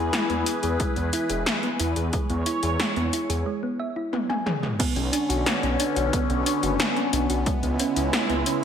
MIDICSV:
0, 0, Header, 1, 5, 480
1, 0, Start_track
1, 0, Tempo, 666667
1, 1534, Time_signature, 4, 2, 24, 8
1, 6222, End_track
2, 0, Start_track
2, 0, Title_t, "Analog synth pad"
2, 0, Program_c, 0, 89
2, 0, Note_on_c, 0, 52, 81
2, 0, Note_on_c, 0, 64, 72
2, 0, Note_on_c, 0, 68, 73
2, 0, Note_on_c, 0, 71, 89
2, 1516, Note_off_c, 0, 71, 0
2, 1538, Note_on_c, 0, 73, 89
2, 2466, Note_off_c, 0, 64, 0
2, 2467, Note_off_c, 0, 52, 0
2, 2467, Note_off_c, 0, 68, 0
2, 2486, Note_off_c, 0, 73, 0
2, 3453, Note_on_c, 0, 50, 79
2, 3453, Note_on_c, 0, 61, 90
2, 3454, Note_on_c, 0, 59, 75
2, 5354, Note_off_c, 0, 61, 0
2, 5355, Note_off_c, 0, 50, 0
2, 5373, Note_on_c, 0, 49, 82
2, 5373, Note_on_c, 0, 64, 88
2, 5374, Note_on_c, 0, 56, 74
2, 6222, Note_off_c, 0, 49, 0
2, 6222, Note_off_c, 0, 56, 0
2, 6222, Note_off_c, 0, 59, 0
2, 6222, Note_off_c, 0, 64, 0
2, 6222, End_track
3, 0, Start_track
3, 0, Title_t, "Synth arpeggio sound"
3, 0, Program_c, 1, 84
3, 94, Note_on_c, 1, 56, 79
3, 192, Note_off_c, 1, 56, 0
3, 214, Note_on_c, 1, 59, 71
3, 312, Note_off_c, 1, 59, 0
3, 333, Note_on_c, 1, 64, 78
3, 448, Note_off_c, 1, 64, 0
3, 454, Note_on_c, 1, 68, 77
3, 568, Note_off_c, 1, 68, 0
3, 574, Note_on_c, 1, 56, 98
3, 672, Note_off_c, 1, 56, 0
3, 694, Note_on_c, 1, 59, 73
3, 808, Note_off_c, 1, 59, 0
3, 814, Note_on_c, 1, 64, 98
3, 912, Note_off_c, 1, 64, 0
3, 934, Note_on_c, 1, 68, 76
3, 1032, Note_off_c, 1, 68, 0
3, 1053, Note_on_c, 1, 56, 81
3, 1152, Note_off_c, 1, 56, 0
3, 1174, Note_on_c, 1, 59, 75
3, 1272, Note_off_c, 1, 59, 0
3, 1293, Note_on_c, 1, 64, 77
3, 1407, Note_off_c, 1, 64, 0
3, 1414, Note_on_c, 1, 68, 75
3, 1528, Note_off_c, 1, 68, 0
3, 1533, Note_on_c, 1, 56, 98
3, 1632, Note_off_c, 1, 56, 0
3, 1654, Note_on_c, 1, 59, 77
3, 1768, Note_off_c, 1, 59, 0
3, 1774, Note_on_c, 1, 64, 99
3, 1872, Note_off_c, 1, 64, 0
3, 1894, Note_on_c, 1, 68, 79
3, 1992, Note_off_c, 1, 68, 0
3, 2014, Note_on_c, 1, 56, 86
3, 2112, Note_off_c, 1, 56, 0
3, 2134, Note_on_c, 1, 59, 71
3, 2232, Note_off_c, 1, 59, 0
3, 2254, Note_on_c, 1, 64, 75
3, 2368, Note_off_c, 1, 64, 0
3, 2373, Note_on_c, 1, 68, 78
3, 2488, Note_off_c, 1, 68, 0
3, 2493, Note_on_c, 1, 56, 104
3, 2592, Note_off_c, 1, 56, 0
3, 2613, Note_on_c, 1, 59, 76
3, 2728, Note_off_c, 1, 59, 0
3, 2733, Note_on_c, 1, 76, 74
3, 2832, Note_off_c, 1, 76, 0
3, 2853, Note_on_c, 1, 64, 78
3, 2968, Note_off_c, 1, 64, 0
3, 2973, Note_on_c, 1, 59, 82
3, 3072, Note_off_c, 1, 59, 0
3, 3092, Note_on_c, 1, 80, 76
3, 3191, Note_off_c, 1, 80, 0
3, 3211, Note_on_c, 1, 68, 73
3, 3311, Note_off_c, 1, 68, 0
3, 3331, Note_on_c, 1, 56, 76
3, 3447, Note_off_c, 1, 56, 0
3, 3452, Note_on_c, 1, 59, 102
3, 3551, Note_off_c, 1, 59, 0
3, 3571, Note_on_c, 1, 61, 77
3, 3687, Note_off_c, 1, 61, 0
3, 3690, Note_on_c, 1, 62, 97
3, 3790, Note_off_c, 1, 62, 0
3, 3811, Note_on_c, 1, 66, 80
3, 3911, Note_off_c, 1, 66, 0
3, 3933, Note_on_c, 1, 59, 84
3, 4032, Note_off_c, 1, 59, 0
3, 4052, Note_on_c, 1, 61, 74
3, 4151, Note_off_c, 1, 61, 0
3, 4173, Note_on_c, 1, 62, 79
3, 4288, Note_off_c, 1, 62, 0
3, 4292, Note_on_c, 1, 66, 78
3, 4407, Note_off_c, 1, 66, 0
3, 4413, Note_on_c, 1, 59, 103
3, 4512, Note_off_c, 1, 59, 0
3, 4532, Note_on_c, 1, 61, 76
3, 4647, Note_off_c, 1, 61, 0
3, 4652, Note_on_c, 1, 62, 101
3, 4751, Note_off_c, 1, 62, 0
3, 4773, Note_on_c, 1, 66, 75
3, 4872, Note_off_c, 1, 66, 0
3, 4895, Note_on_c, 1, 59, 84
3, 4993, Note_off_c, 1, 59, 0
3, 5015, Note_on_c, 1, 61, 77
3, 5113, Note_off_c, 1, 61, 0
3, 5135, Note_on_c, 1, 62, 80
3, 5248, Note_off_c, 1, 62, 0
3, 5254, Note_on_c, 1, 66, 78
3, 5368, Note_off_c, 1, 66, 0
3, 5375, Note_on_c, 1, 56, 103
3, 5473, Note_off_c, 1, 56, 0
3, 5495, Note_on_c, 1, 59, 77
3, 5609, Note_off_c, 1, 59, 0
3, 5614, Note_on_c, 1, 61, 105
3, 5712, Note_off_c, 1, 61, 0
3, 5735, Note_on_c, 1, 64, 82
3, 5833, Note_off_c, 1, 64, 0
3, 5853, Note_on_c, 1, 56, 84
3, 5952, Note_off_c, 1, 56, 0
3, 5974, Note_on_c, 1, 59, 71
3, 6072, Note_off_c, 1, 59, 0
3, 6093, Note_on_c, 1, 61, 83
3, 6208, Note_off_c, 1, 61, 0
3, 6222, End_track
4, 0, Start_track
4, 0, Title_t, "Detuned saw bass"
4, 0, Program_c, 2, 39
4, 0, Note_on_c, 2, 40, 79
4, 72, Note_off_c, 2, 40, 0
4, 215, Note_on_c, 2, 40, 74
4, 312, Note_off_c, 2, 40, 0
4, 456, Note_on_c, 2, 40, 77
4, 553, Note_off_c, 2, 40, 0
4, 697, Note_on_c, 2, 40, 74
4, 793, Note_off_c, 2, 40, 0
4, 936, Note_on_c, 2, 28, 83
4, 1033, Note_off_c, 2, 28, 0
4, 1296, Note_on_c, 2, 40, 94
4, 1393, Note_off_c, 2, 40, 0
4, 1415, Note_on_c, 2, 40, 84
4, 1512, Note_off_c, 2, 40, 0
4, 1655, Note_on_c, 2, 40, 74
4, 1752, Note_off_c, 2, 40, 0
4, 1895, Note_on_c, 2, 40, 82
4, 1992, Note_off_c, 2, 40, 0
4, 2136, Note_on_c, 2, 40, 76
4, 2233, Note_off_c, 2, 40, 0
4, 2374, Note_on_c, 2, 40, 79
4, 2472, Note_off_c, 2, 40, 0
4, 3573, Note_on_c, 2, 35, 77
4, 3671, Note_off_c, 2, 35, 0
4, 3815, Note_on_c, 2, 35, 79
4, 3912, Note_off_c, 2, 35, 0
4, 4056, Note_on_c, 2, 35, 75
4, 4153, Note_off_c, 2, 35, 0
4, 4294, Note_on_c, 2, 35, 78
4, 4392, Note_off_c, 2, 35, 0
4, 4535, Note_on_c, 2, 35, 73
4, 4632, Note_off_c, 2, 35, 0
4, 4775, Note_on_c, 2, 30, 86
4, 4872, Note_off_c, 2, 30, 0
4, 5134, Note_on_c, 2, 35, 94
4, 5232, Note_off_c, 2, 35, 0
4, 5255, Note_on_c, 2, 35, 87
4, 5352, Note_off_c, 2, 35, 0
4, 5494, Note_on_c, 2, 37, 76
4, 5591, Note_off_c, 2, 37, 0
4, 5736, Note_on_c, 2, 37, 83
4, 5833, Note_off_c, 2, 37, 0
4, 5974, Note_on_c, 2, 37, 75
4, 6072, Note_off_c, 2, 37, 0
4, 6222, End_track
5, 0, Start_track
5, 0, Title_t, "Drums"
5, 94, Note_on_c, 9, 38, 111
5, 94, Note_on_c, 9, 42, 52
5, 166, Note_off_c, 9, 38, 0
5, 166, Note_off_c, 9, 42, 0
5, 214, Note_on_c, 9, 42, 25
5, 286, Note_off_c, 9, 42, 0
5, 334, Note_on_c, 9, 42, 88
5, 406, Note_off_c, 9, 42, 0
5, 453, Note_on_c, 9, 42, 50
5, 525, Note_off_c, 9, 42, 0
5, 574, Note_on_c, 9, 42, 51
5, 575, Note_on_c, 9, 36, 108
5, 646, Note_off_c, 9, 42, 0
5, 647, Note_off_c, 9, 36, 0
5, 694, Note_on_c, 9, 42, 26
5, 766, Note_off_c, 9, 42, 0
5, 814, Note_on_c, 9, 42, 90
5, 886, Note_off_c, 9, 42, 0
5, 933, Note_on_c, 9, 42, 52
5, 1005, Note_off_c, 9, 42, 0
5, 1054, Note_on_c, 9, 38, 108
5, 1054, Note_on_c, 9, 42, 50
5, 1126, Note_off_c, 9, 38, 0
5, 1126, Note_off_c, 9, 42, 0
5, 1174, Note_on_c, 9, 42, 25
5, 1246, Note_off_c, 9, 42, 0
5, 1293, Note_on_c, 9, 42, 87
5, 1365, Note_off_c, 9, 42, 0
5, 1412, Note_on_c, 9, 42, 48
5, 1484, Note_off_c, 9, 42, 0
5, 1533, Note_on_c, 9, 42, 50
5, 1535, Note_on_c, 9, 36, 110
5, 1605, Note_off_c, 9, 42, 0
5, 1607, Note_off_c, 9, 36, 0
5, 1653, Note_on_c, 9, 42, 27
5, 1725, Note_off_c, 9, 42, 0
5, 1772, Note_on_c, 9, 42, 87
5, 1844, Note_off_c, 9, 42, 0
5, 1892, Note_on_c, 9, 42, 52
5, 1964, Note_off_c, 9, 42, 0
5, 2013, Note_on_c, 9, 38, 112
5, 2013, Note_on_c, 9, 42, 55
5, 2085, Note_off_c, 9, 38, 0
5, 2085, Note_off_c, 9, 42, 0
5, 2134, Note_on_c, 9, 42, 26
5, 2206, Note_off_c, 9, 42, 0
5, 2254, Note_on_c, 9, 42, 97
5, 2326, Note_off_c, 9, 42, 0
5, 2375, Note_on_c, 9, 42, 53
5, 2447, Note_off_c, 9, 42, 0
5, 2974, Note_on_c, 9, 48, 59
5, 3046, Note_off_c, 9, 48, 0
5, 3095, Note_on_c, 9, 48, 63
5, 3167, Note_off_c, 9, 48, 0
5, 3214, Note_on_c, 9, 47, 82
5, 3286, Note_off_c, 9, 47, 0
5, 3334, Note_on_c, 9, 45, 83
5, 3406, Note_off_c, 9, 45, 0
5, 3454, Note_on_c, 9, 42, 56
5, 3454, Note_on_c, 9, 49, 107
5, 3455, Note_on_c, 9, 36, 117
5, 3526, Note_off_c, 9, 42, 0
5, 3526, Note_off_c, 9, 49, 0
5, 3527, Note_off_c, 9, 36, 0
5, 3573, Note_on_c, 9, 42, 29
5, 3645, Note_off_c, 9, 42, 0
5, 3694, Note_on_c, 9, 42, 89
5, 3766, Note_off_c, 9, 42, 0
5, 3815, Note_on_c, 9, 42, 54
5, 3887, Note_off_c, 9, 42, 0
5, 3934, Note_on_c, 9, 38, 124
5, 3934, Note_on_c, 9, 42, 57
5, 4006, Note_off_c, 9, 38, 0
5, 4006, Note_off_c, 9, 42, 0
5, 4056, Note_on_c, 9, 42, 28
5, 4128, Note_off_c, 9, 42, 0
5, 4174, Note_on_c, 9, 42, 102
5, 4246, Note_off_c, 9, 42, 0
5, 4294, Note_on_c, 9, 42, 56
5, 4366, Note_off_c, 9, 42, 0
5, 4415, Note_on_c, 9, 36, 113
5, 4415, Note_on_c, 9, 42, 58
5, 4487, Note_off_c, 9, 36, 0
5, 4487, Note_off_c, 9, 42, 0
5, 4534, Note_on_c, 9, 42, 28
5, 4606, Note_off_c, 9, 42, 0
5, 4654, Note_on_c, 9, 42, 100
5, 4726, Note_off_c, 9, 42, 0
5, 4774, Note_on_c, 9, 42, 56
5, 4846, Note_off_c, 9, 42, 0
5, 4894, Note_on_c, 9, 38, 120
5, 4894, Note_on_c, 9, 42, 56
5, 4966, Note_off_c, 9, 38, 0
5, 4966, Note_off_c, 9, 42, 0
5, 5015, Note_on_c, 9, 42, 29
5, 5087, Note_off_c, 9, 42, 0
5, 5134, Note_on_c, 9, 42, 96
5, 5206, Note_off_c, 9, 42, 0
5, 5254, Note_on_c, 9, 42, 55
5, 5326, Note_off_c, 9, 42, 0
5, 5373, Note_on_c, 9, 42, 56
5, 5375, Note_on_c, 9, 36, 127
5, 5445, Note_off_c, 9, 42, 0
5, 5447, Note_off_c, 9, 36, 0
5, 5494, Note_on_c, 9, 42, 29
5, 5566, Note_off_c, 9, 42, 0
5, 5612, Note_on_c, 9, 42, 92
5, 5684, Note_off_c, 9, 42, 0
5, 5734, Note_on_c, 9, 42, 55
5, 5806, Note_off_c, 9, 42, 0
5, 5854, Note_on_c, 9, 38, 127
5, 5854, Note_on_c, 9, 42, 56
5, 5926, Note_off_c, 9, 38, 0
5, 5926, Note_off_c, 9, 42, 0
5, 5973, Note_on_c, 9, 42, 28
5, 6045, Note_off_c, 9, 42, 0
5, 6093, Note_on_c, 9, 42, 100
5, 6165, Note_off_c, 9, 42, 0
5, 6222, End_track
0, 0, End_of_file